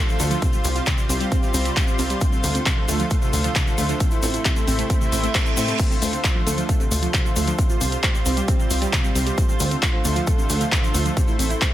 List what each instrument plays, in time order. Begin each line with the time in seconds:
0.08 synth arpeggio sound F3, shaker
0.19 analog synth bass D2, synth arpeggio sound A3, open hi-hat, shaker
0.31 synth arpeggio sound F3, closed hi-hat, shaker
0.42 synth arpeggio sound C3, kick, closed hi-hat, shaker
0.53 synth arpeggio sound F4, shaker
0.64 analog synth bass C2, synth arpeggio sound C4, open hi-hat, shaker
0.75 synth arpeggio sound F4, closed hi-hat, shaker
0.86 synth arpeggio sound C3, kick, clap, closed hi-hat, shaker
0.98 synth arpeggio sound G3, shaker
1.09 analog synth bass C2, synth arpeggio sound C4, open hi-hat, shaker
1.21 synth arpeggio sound G3, closed hi-hat, shaker
1.32 synth arpeggio sound C4, kick, closed hi-hat, shaker
1.43 synth arpeggio sound C3, shaker
1.54 analog synth bass C2, synth arpeggio sound C4, open hi-hat, shaker
1.65 synth arpeggio sound G3, closed hi-hat, shaker
1.76 synth arpeggio sound C3, kick, clap, closed hi-hat, shaker
1.87 synth arpeggio sound G3, shaker
1.99 analog synth bass C2, synth arpeggio sound C4, open hi-hat, shaker
2.10 synth arpeggio sound G3, closed hi-hat, shaker
2.21 synth arpeggio sound C3, kick, closed hi-hat, shaker
2.33 synth arpeggio sound C4, shaker
2.43 analog synth bass D2, synth arpeggio sound A3, open hi-hat, shaker
2.55 synth arpeggio sound C4, closed hi-hat, shaker
2.66 synth arpeggio sound C3, kick, clap, closed hi-hat, shaker
2.77 synth arpeggio sound F3
2.88 analog synth bass D2, synth arpeggio sound A3, open hi-hat, shaker
2.99 synth arpeggio sound F3, closed hi-hat, shaker
3.10 synth arpeggio sound A3, kick, closed hi-hat, shaker
3.22 synth arpeggio sound C3, shaker
3.33 analog synth bass D2, synth arpeggio sound A3, open hi-hat, shaker
3.44 synth arpeggio sound F3, closed hi-hat, shaker
3.55 synth arpeggio sound C3, kick, clap, closed hi-hat, shaker
3.67 synth arpeggio sound F3, shaker
3.78 analog synth bass D2, synth arpeggio sound A3, open hi-hat, shaker
3.89 synth arpeggio sound F3, closed hi-hat, shaker
4.00 synth arpeggio sound C3, kick, closed hi-hat, shaker
4.11 synth arpeggio sound E4, shaker
4.22 analog synth bass A1, synth arpeggio sound C4, open hi-hat, shaker
4.34 synth arpeggio sound E4, closed hi-hat, shaker
4.45 synth arpeggio sound C3, kick, clap, closed hi-hat, shaker
4.56 synth arpeggio sound A3, shaker
4.67 analog synth bass A1, synth arpeggio sound C4, open hi-hat, shaker
4.79 synth arpeggio sound A3, closed hi-hat, shaker
4.90 synth arpeggio sound C4, kick, closed hi-hat, reverse cymbal, shaker
5.01 synth arpeggio sound C3, shaker
5.12 analog synth bass A1, synth arpeggio sound C4, open hi-hat, shaker
5.23 synth arpeggio sound A3, closed hi-hat, shaker
5.34 synth arpeggio sound C3, kick, clap, closed hi-hat, shaker
5.46 synth arpeggio sound A3, shaker
5.57 analog synth bass A2, synth arpeggio sound C4, open hi-hat, shaker
5.68 synth arpeggio sound A3, closed hi-hat, shaker
5.79 synth arpeggio sound C3, kick, closed hi-hat, crash, shaker
5.91 synth arpeggio sound C4, shaker
6.02 analog synth bass D2, synth arpeggio sound A3, open hi-hat, shaker
6.13 synth arpeggio sound C4, closed hi-hat, shaker
6.24 synth arpeggio sound F4, kick, clap, closed hi-hat, shaker
6.35 synth arpeggio sound F3
6.47 analog synth bass D2, synth arpeggio sound A3, open hi-hat, shaker
6.58 synth arpeggio sound F3, closed hi-hat, shaker
6.69 synth arpeggio sound A3, kick, closed hi-hat, shaker
6.80 synth arpeggio sound C3, shaker
6.91 analog synth bass D2, synth arpeggio sound A3, open hi-hat, shaker
7.02 synth arpeggio sound F3, closed hi-hat, shaker
7.14 synth arpeggio sound C3, kick, clap, closed hi-hat, shaker
7.25 synth arpeggio sound F3, shaker
7.36 analog synth bass D2, synth arpeggio sound A3, open hi-hat, shaker
7.47 synth arpeggio sound F3, closed hi-hat, shaker
7.59 synth arpeggio sound C3, kick, closed hi-hat, shaker
7.70 synth arpeggio sound F4, shaker
7.81 analog synth bass C2, synth arpeggio sound C4, open hi-hat, shaker
7.92 synth arpeggio sound F4, closed hi-hat, shaker
8.03 synth arpeggio sound C5, kick, clap, closed hi-hat, shaker
8.15 synth arpeggio sound G3, shaker
8.26 analog synth bass C2, synth arpeggio sound C4, open hi-hat, shaker
8.37 synth arpeggio sound G3, closed hi-hat, shaker
8.48 synth arpeggio sound C4, kick, closed hi-hat, shaker
8.59 synth arpeggio sound C3, shaker
8.70 analog synth bass C2, synth arpeggio sound C4, open hi-hat, shaker
8.82 synth arpeggio sound G3, closed hi-hat, shaker
8.93 synth arpeggio sound C3, kick, clap, closed hi-hat, shaker
9.04 synth arpeggio sound G3, shaker
9.15 analog synth bass C2, synth arpeggio sound C4, open hi-hat, shaker
9.26 synth arpeggio sound G3, closed hi-hat, shaker
9.38 synth arpeggio sound C3, kick, closed hi-hat, shaker
9.49 synth arpeggio sound C4, shaker
9.60 analog synth bass D2, synth arpeggio sound A3, open hi-hat, shaker
9.71 synth arpeggio sound C4, closed hi-hat, shaker
9.82 synth arpeggio sound F4, kick, clap, closed hi-hat, shaker
9.94 synth arpeggio sound F3
10.05 analog synth bass D2, synth arpeggio sound A3, open hi-hat, shaker
10.16 synth arpeggio sound F3, closed hi-hat, shaker
10.27 synth arpeggio sound A3, kick, closed hi-hat, shaker
10.38 synth arpeggio sound C3, shaker
10.50 analog synth bass D2, synth arpeggio sound A3, open hi-hat, shaker
10.61 synth arpeggio sound F3, closed hi-hat, shaker
10.72 synth arpeggio sound C3, kick, clap, closed hi-hat, shaker
10.83 synth arpeggio sound F3, shaker
10.94 analog synth bass D2, synth arpeggio sound A3, open hi-hat, shaker
11.06 synth arpeggio sound F3, closed hi-hat, shaker
11.17 synth arpeggio sound C3, kick, closed hi-hat, shaker
11.28 synth arpeggio sound E4, shaker
11.39 analog synth bass A1, synth arpeggio sound C4, open hi-hat, shaker
11.50 synth arpeggio sound E4, closed hi-hat, shaker
11.61 synth arpeggio sound C5, kick, clap, closed hi-hat, shaker